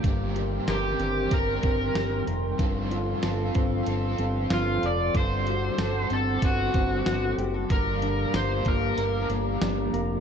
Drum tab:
HH |xxxxxxxx|xxxxxxxx|xxxxxxxx|xxxxxxxx|
TB |--x---x-|--x---x-|--x---x-|--x---x-|
SD |--o---o-|--o---o-|--o---o-|--o---o-|
BD |o---oo--|o--o----|o---oo--|o--o----|